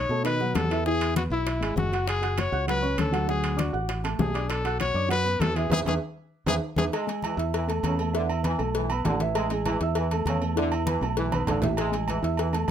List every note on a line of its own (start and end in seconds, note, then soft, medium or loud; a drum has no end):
0.00 0.23 C#5 medium
0.09 0.52 B2 medium
0.09 0.23 A3 medium
0.09 0.23 A4 medium
0.09 0.23 A5 medium
0.09 high conga soft
0.24 0.37 D#3 medium
0.24 0.37 D#4 medium
0.24 0.57 B4 loud
0.24 0.37 D#5 medium
0.24 high bongo medium
0.24 high conga soft
0.24 high timbale medium
0.40 0.65 F#3 medium
0.40 0.65 F#4 medium
0.40 0.65 F#5 medium
0.40 high bongo soft
0.40 high conga soft
0.55 1.26 E2 medium
0.55 0.85 A4 medium
0.55 high bongo soft
0.55 low bongo medium
0.55 high conga medium
0.55 high timbale medium
0.55 low timbale medium
0.70 0.83 E3 medium
0.70 0.83 E4 medium
0.70 0.83 E5 medium
0.70 high bongo soft
0.70 high conga soft
0.70 high timbale medium
0.86 1.11 E3 medium
0.86 1.11 E4 medium
0.86 1.14 G#4 loud
0.86 high bongo medium
0.86 high conga soft
1.01 high bongo soft
1.01 high conga soft
1.01 high timbale medium
1.15 1.28 B3 medium
1.15 1.23 F#4 medium
1.15 1.28 B4 medium
1.15 1.28 B5 medium
1.15 high bongo medium
1.15 high conga medium
1.15 high timbale medium
1.30 1.59 B1 medium
1.30 1.56 E4 medium
1.30 1.74 E4 medium
1.30 1.57 E5 medium
1.30 1.57 E6 medium
1.30 high conga soft
1.46 high bongo medium
1.46 high conga soft
1.46 high timbale medium
1.60 1.75 G#1 medium
1.60 1.86 G#3 medium
1.60 1.87 G#4 medium
1.60 1.87 G#5 medium
1.60 high bongo soft
1.60 high conga soft
1.60 high timbale medium
1.76 2.47 F#1 medium
1.76 2.05 F#4 medium
1.76 high bongo soft
1.76 low bongo medium
1.76 high conga medium
1.92 2.17 F#4 medium
1.92 2.18 F#5 medium
1.92 2.17 F#6 medium
1.92 high bongo soft
1.92 high conga soft
1.92 high timbale medium
2.08 2.41 G#4 loud
2.08 high bongo medium
2.08 high conga soft
2.08 high timbale loud
2.22 2.47 F#4 medium
2.22 2.47 F#5 medium
2.22 2.47 F#6 medium
2.22 high bongo soft
2.22 high conga soft
2.22 high timbale medium
2.38 2.68 C#5 medium
2.38 high bongo medium
2.38 high conga medium
2.38 high timbale loud
2.52 2.95 C#2 medium
2.52 2.65 F#4 medium
2.52 2.65 F#5 medium
2.52 2.65 F#6 medium
2.52 high conga soft
2.67 2.80 F#3 medium
2.67 2.80 F#4 medium
2.67 2.97 B4 loud
2.67 2.80 F#5 medium
2.67 high bongo medium
2.67 high conga soft
2.67 high timbale medium
2.82 3.08 C#4 medium
2.82 3.08 C#5 medium
2.82 3.08 C#6 medium
2.82 high bongo soft
2.82 high conga soft
2.98 3.69 D2 medium
2.98 3.27 A4 medium
2.98 high bongo soft
2.98 low bongo medium
2.98 high conga medium
2.98 high timbale loud
3.12 3.25 F#3 medium
3.12 3.25 F#4 medium
3.12 3.25 F#5 medium
3.12 high bongo soft
3.12 high conga soft
3.12 high timbale medium
3.27 3.53 F#3 medium
3.27 3.53 F#4 medium
3.27 3.57 G#4 medium
3.27 3.53 F#5 medium
3.27 high bongo medium
3.27 high conga soft
3.44 high bongo soft
3.44 high conga soft
3.44 high timbale medium
3.56 3.70 D4 medium
3.56 3.74 F#4 medium
3.56 3.70 D5 medium
3.56 3.70 D6 medium
3.56 high bongo medium
3.56 high conga medium
3.56 high timbale medium
3.73 4.16 A1 medium
3.73 3.99 F#4 medium
3.73 3.98 F#5 medium
3.73 3.99 F#6 medium
3.73 high conga soft
3.89 high bongo medium
3.89 high conga soft
3.89 high timbale medium
4.04 4.29 A3 medium
4.04 4.29 A4 medium
4.04 4.29 A5 medium
4.04 high bongo soft
4.04 high conga soft
4.04 high timbale medium
4.19 4.90 B1 medium
4.19 4.50 G#4 medium
4.19 high bongo soft
4.19 low bongo medium
4.19 high conga medium
4.19 low timbale medium
4.34 4.60 D4 medium
4.34 4.60 D5 medium
4.34 4.60 D6 medium
4.34 high bongo soft
4.34 high conga soft
4.34 high timbale medium
4.49 4.80 A4 loud
4.49 high bongo medium
4.49 high conga soft
4.49 high timbale medium
4.65 4.90 F#4 medium
4.65 4.90 F#5 medium
4.65 4.90 F#6 medium
4.65 high bongo soft
4.65 high conga soft
4.65 high timbale medium
4.80 5.09 C#5 loud
4.80 high bongo medium
4.80 high conga medium
4.80 high timbale loud
4.94 5.37 F#2 medium
4.94 5.07 D4 medium
4.94 5.08 D5 medium
4.94 5.08 D6 medium
4.94 high conga soft
5.08 5.22 F#3 medium
5.08 5.22 F#4 medium
5.08 5.42 B4 loud
5.08 5.22 F#5 medium
5.08 high bongo medium
5.08 high conga soft
5.08 high timbale medium
5.24 5.50 B3 medium
5.24 5.50 B4 medium
5.24 5.50 B5 medium
5.24 high bongo soft
5.24 high conga soft
5.40 5.69 E2 loud
5.40 5.57 A4 loud
5.40 high bongo soft
5.40 low bongo medium
5.40 high conga medium
5.40 high timbale medium
5.40 low timbale medium
5.55 5.68 E3 medium
5.55 5.68 E4 medium
5.55 5.71 G#4 medium
5.55 5.69 E5 medium
5.55 high bongo soft
5.55 high conga soft
5.55 high timbale medium
5.70 5.82 E2 loud
5.70 5.81 G#4 medium
5.70 5.80 G#4 loud
5.70 5.81 B4 medium
5.70 5.81 E5 medium
5.70 low bongo loud
5.70 high conga medium
5.70 high timbale loud
5.85 5.97 E2 loud
5.85 5.96 G#4 medium
5.85 5.94 G#4 loud
5.85 5.96 B4 loud
5.85 5.96 E5 loud
5.85 low bongo loud
5.85 high conga medium
5.85 high timbale medium
6.46 6.58 E2 medium
6.46 6.57 G#4 medium
6.46 6.55 G#4 loud
6.46 6.57 B4 medium
6.46 6.57 E5 medium
6.46 low bongo loud
6.46 high conga loud
6.46 high timbale loud
6.76 6.88 E2 loud
6.76 6.87 G#4 medium
6.76 6.85 G#4 medium
6.76 6.87 B4 medium
6.76 6.87 E5 medium
6.76 low bongo loud
6.76 high conga medium
6.76 high timbale loud
6.92 7.08 G#3 loud
6.92 cowbell loud
6.92 high conga soft
6.92 low agogo loud
7.07 7.32 G#3 medium
7.07 7.32 G#4 medium
7.07 7.33 G#5 medium
7.07 cowbell medium
7.07 high conga soft
7.07 low agogo medium
7.22 7.39 E3 medium
7.22 cowbell medium
7.22 high conga medium
7.22 low agogo loud
7.37 7.80 E2 medium
7.37 7.63 E4 medium
7.37 7.62 E5 medium
7.37 7.63 E6 medium
7.37 cowbell medium
7.37 high conga soft
7.53 7.70 E3 medium
7.53 cowbell loud
7.53 high conga soft
7.53 low agogo medium
7.67 7.93 A3 medium
7.67 7.93 A4 medium
7.67 7.93 A5 medium
7.67 cowbell medium
7.67 high conga soft
7.67 low agogo medium
7.83 8.54 E2 medium
7.83 8.01 C#3 medium
7.83 cowbell medium
7.83 high conga medium
7.83 low agogo loud
7.99 8.12 A3 medium
7.99 8.11 A4 medium
7.99 8.12 A5 medium
7.99 high conga soft
7.99 low agogo medium
8.13 8.30 D3 medium
8.13 8.39 E3 medium
8.13 8.39 E4 medium
8.13 8.39 E5 medium
8.13 cowbell loud
8.13 high conga soft
8.29 high conga soft
8.29 low agogo loud
8.43 8.62 E3 medium
8.43 8.56 B3 medium
8.43 8.56 B4 medium
8.43 8.57 B5 medium
8.43 cowbell medium
8.43 high conga loud
8.43 low agogo medium
8.58 9.02 B1 medium
8.58 8.84 A3 medium
8.58 8.84 A4 medium
8.58 8.84 A5 medium
8.58 high conga soft
8.58 low agogo medium
8.75 8.91 E3 medium
8.75 cowbell loud
8.75 high conga soft
8.90 9.02 B3 medium
8.90 9.03 B4 medium
8.90 9.03 B5 medium
8.90 high conga soft
8.90 low agogo loud
9.05 9.76 A1 loud
9.05 9.21 D3 medium
9.05 9.18 A3 medium
9.05 9.18 A4 medium
9.05 9.18 A5 medium
9.05 cowbell medium
9.05 high conga medium
9.05 low timbale medium
9.05 low agogo medium
9.20 9.45 E3 medium
9.20 9.46 E4 medium
9.20 9.45 E5 medium
9.20 cowbell medium
9.20 high conga soft
9.35 9.51 G#3 medium
9.35 cowbell loud
9.35 high conga soft
9.35 low agogo loud
9.50 9.76 G#3 medium
9.50 9.76 G#4 medium
9.50 9.76 G#5 medium
9.50 cowbell medium
9.50 high conga soft
9.50 low agogo medium
9.65 9.81 E3 medium
9.65 cowbell medium
9.65 high conga medium
9.65 low agogo loud
9.81 10.23 E2 medium
9.81 10.06 E4 medium
9.81 10.06 E5 medium
9.81 10.07 E6 medium
9.81 cowbell medium
9.81 high conga soft
9.95 10.12 E3 medium
9.95 cowbell loud
9.95 high conga soft
9.95 low agogo medium
10.11 10.37 A3 medium
10.11 10.37 A4 medium
10.11 10.37 A5 medium
10.11 cowbell medium
10.11 high conga soft
10.11 low agogo medium
10.25 10.96 E2 medium
10.25 10.42 C#3 medium
10.25 cowbell medium
10.25 high conga medium
10.25 low agogo loud
10.41 10.54 A3 medium
10.41 10.54 A4 medium
10.41 10.54 A5 medium
10.41 high conga soft
10.41 low agogo medium
10.56 10.73 D3 medium
10.56 10.81 E3 medium
10.56 10.81 E4 medium
10.56 10.82 E5 medium
10.56 cowbell loud
10.56 high conga soft
10.72 high conga soft
10.72 low agogo loud
10.86 11.03 E3 medium
10.86 10.99 B3 medium
10.86 10.99 B4 medium
10.86 10.99 B5 medium
10.86 cowbell medium
10.86 high conga loud
10.86 low agogo medium
11.01 11.44 B1 medium
11.01 11.27 A3 medium
11.01 11.27 A4 medium
11.01 11.27 A5 medium
11.01 high conga soft
11.01 low agogo medium
11.17 11.33 E3 medium
11.17 cowbell loud
11.17 high conga soft
11.31 11.44 B3 medium
11.31 11.45 B4 medium
11.31 11.45 B5 medium
11.31 high conga medium
11.31 high timbale medium
11.31 low agogo loud
11.47 12.18 A1 medium
11.47 11.63 D3 medium
11.47 11.60 A3 medium
11.47 11.60 A4 medium
11.47 11.60 A5 medium
11.47 cowbell medium
11.47 low conga medium
11.47 high timbale medium
11.47 low agogo medium
11.62 11.87 E3 medium
11.62 11.87 E4 medium
11.62 11.87 E5 medium
11.62 cowbell medium
11.62 low conga medium
11.62 low timbale medium
11.77 11.94 G#3 loud
11.77 cowbell loud
11.77 high conga soft
11.77 low agogo loud
11.91 12.17 G#3 medium
11.91 12.17 G#4 medium
11.91 12.17 G#5 medium
11.91 cowbell medium
11.91 high conga soft
11.91 low agogo medium
12.08 12.25 E3 medium
12.08 cowbell medium
12.08 high conga medium
12.08 low agogo loud
12.22 12.65 E2 medium
12.22 12.48 E4 medium
12.22 12.48 E5 medium
12.22 12.48 E6 medium
12.22 cowbell medium
12.22 high conga soft
12.37 12.55 E3 medium
12.37 cowbell loud
12.37 high conga soft
12.37 low agogo medium
12.52 12.71 A3 medium
12.52 12.71 A4 medium
12.52 12.71 A5 medium
12.52 cowbell medium
12.52 high conga soft
12.52 low agogo medium